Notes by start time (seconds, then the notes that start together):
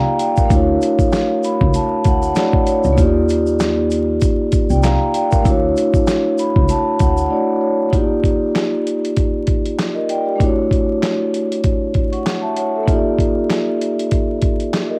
Already playing: A#3 D#4 F4 G4 D5 F5 G5 A#5
0.19 D5 G5, closed hi-hat, shaker
0.35 A#4 F5, kick, shaker
0.45 A3 D4
0.50 D2 E4 F#4, kick, closed hi-hat, shaker
0.55 C#5
0.82 closed hi-hat, shaker
0.99 kick, shaker
1.12 snare, clap, closed hi-hat, shaker
1.43 B5, closed hi-hat, shaker
1.61 C#2, kick
1.74 A5, closed hi-hat, shaker
2.04 D2 F#5, kick, closed hi-hat, shaker
2.22 F#5, shaker
2.33 A3 D4 E4 F#4 D5, snare, clap, closed hi-hat, shaker
2.38 C#5
2.53 kick
2.66 C#5, closed hi-hat, shaker
2.84 C#2, shaker
2.93 A#3 D#4
2.97 D#2 F4 G4, kick, closed hi-hat, shaker
3.02 D5
3.29 closed hi-hat, shaker
3.47 shaker
3.60 snare, clap, closed hi-hat, shaker
3.91 closed hi-hat, shaker
4.21 kick, closed hi-hat, shaker
4.52 kick, closed hi-hat, shaker
4.70 C2 D5 G5, shaker
4.83 F5 A#5, snare, clap, closed hi-hat, shaker
5.14 D5 G5, closed hi-hat, shaker
5.30 A#4 F5, kick, shaker
5.40 A3 D4
5.45 D2 E4 F#4, kick, closed hi-hat, shaker
5.49 C#5
5.77 closed hi-hat, shaker
5.94 kick, shaker
6.07 snare, clap, closed hi-hat, shaker
6.38 B5, closed hi-hat, shaker
6.56 C#2, kick
6.69 A5, closed hi-hat, shaker
6.99 D2 F#5, kick, closed hi-hat, shaker
7.17 F#5, shaker
7.28 A3 D4 E4 F#4 D5
7.33 C#5
7.61 C#5
7.89 A#3 D#4, kick
7.93 F4 G4, closed hi-hat
7.98 D5
8.24 kick, closed hi-hat
8.55 snare, clap, closed hi-hat
8.87 closed hi-hat
9.05 closed hi-hat
9.16 kick, closed hi-hat
9.47 kick, closed hi-hat
9.65 closed hi-hat
9.79 snare, clap, closed hi-hat
9.94 A#4 D#5
10.09 D5 G5, closed hi-hat
10.26 G4 D5
10.36 A3 D4
10.40 E4 F#4, kick, closed hi-hat
10.45 C#5
10.71 kick, closed hi-hat
11.03 snare, clap, closed hi-hat
11.34 closed hi-hat
11.52 closed hi-hat
11.64 kick, closed hi-hat
11.94 kick, closed hi-hat
12.12 F#5 C#6, closed hi-hat
12.26 snare, clap, closed hi-hat
12.42 E5 A5
12.57 C#5 F#5, closed hi-hat
12.75 A4 E5
12.83 A#3 D#4
12.88 F4 G4, kick, closed hi-hat
12.93 D5
13.18 kick, closed hi-hat
13.50 snare, clap, closed hi-hat
13.81 closed hi-hat
13.99 closed hi-hat
14.11 kick, closed hi-hat
14.42 kick, closed hi-hat
14.60 closed hi-hat
14.73 snare, clap, closed hi-hat
14.89 A#4 D#5